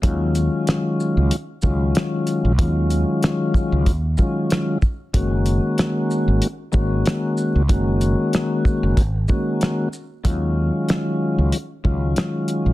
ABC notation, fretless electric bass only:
X:1
M:4/4
L:1/16
Q:"Swing 16ths" 1/4=94
K:Ebm
V:1 name="Fretless electric bass" clef=bass
E,,3 z4 D,, z2 D,,2 z3 B,,, | E,,3 z4 D,, E,,2 z6 | G,,,3 z4 A,,, z2 A,,,2 z3 D,, | G,,,3 z4 G,,, A,,,2 z6 |
E,,3 z4 D,, z2 D,,2 z3 B,,, |]